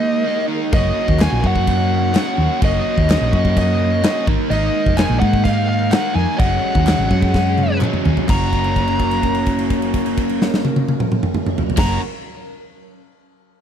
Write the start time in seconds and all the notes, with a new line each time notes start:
Already playing: G#3 A#3 D#4 A#4 D#5
0.24 D#3 A#3 D#4
0.48 A#3 D#4
0.71 F#1 F#3 A#3 C#4 F#4 D#5, kick, crash
1.08 D#2, kick
1.19 A#3 C#4 F#4 G#5, snare, clap, crash
1.32 A#1
1.42 F#2 C#4 F#4, kick
1.47 F#5
1.56 kick
1.67 kick, crash
2.13 A#3 C#4 F#4, snare, clap, crash
2.37 D#2 C#4 F#4
2.61 F#1 A#3 C#4 F#4 D#5, kick, crash
2.98 D#2, kick
3.08 A#3 C#4 F#4, snare, clap, crash
3.21 A#1
3.32 F#2 C#4 F#4, kick
3.45 kick
3.57 D#5, kick, crash
4.03 A#3 C#4 F#4, snare, clap, crash
4.27 G#1 D#3 G#3 A#3 D#4, kick
4.49 G#1 D#3 A#3 D#4 D#5, crash
4.86 F1, kick
4.96 D#3 A#3 D#4 G#5, snare, clap, crash
5.10 A#1
5.20 G#2 D#4 F#5, kick
5.24 A#3
5.33 kick
5.44 F5, kick, crash
5.69 F5
5.91 D#3 A#3 D#4 F#5, snare, clap, crash
6.13 F2 D#4 G#5
6.18 A#3
6.37 F#1 F#3 G#3 C#4 F#5, kick, crash
6.41 F#3 G#4
6.75 D#2, kick
6.85 F#3 G#3 C#4, snare, clap, crash
6.98 G#1
7.09 F#2 G#3 C#4, kick
7.22 kick
7.34 kick, snare
7.58 high tom
7.80 F#3 G#3 C#4, clap, mid tom
7.94 mid tom
8.05 D#2 G#3 C#4, floor tom
8.17 floor tom
8.27 F#1 F#3 A#3 C#4 A#4 A#5, kick, clap, crash
8.31 F#4
8.53 kick, crash
8.64 crash
8.76 kick, crash
8.88 crash
8.99 kick, crash
9.11 crash
9.23 kick, crash
9.35 crash
9.46 kick, crash
9.59 crash
9.70 kick, crash
9.82 crash
9.94 kick, crash
10.06 crash
10.17 kick, crash
10.29 crash
10.42 snare
10.54 snare
10.65 high tom
10.76 high tom
10.88 high tom
11.00 mid tom
11.12 mid tom
11.23 mid tom
11.34 mid tom
11.46 mid tom
11.58 floor tom
11.70 floor tom
11.76 F#1 A#3 C#4 A#5, kick, snare, crash
11.81 F#4